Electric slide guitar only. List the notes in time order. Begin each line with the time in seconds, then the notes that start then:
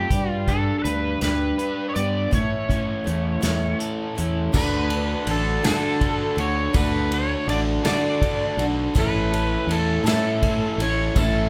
Already playing: G4
0.31 F4
0.49 A4
0.79 A4
0.84 B4
1.23 B4
1.89 C#5
1.96 D5
2.35 C#5
4.56 B4
5.31 A4
5.67 A4
6.40 C#5
6.75 B4
7.14 C#5
7.50 D5
7.87 D5
9.00 B4
9.72 A4
10.07 A4
10.82 C#5
11.18 A4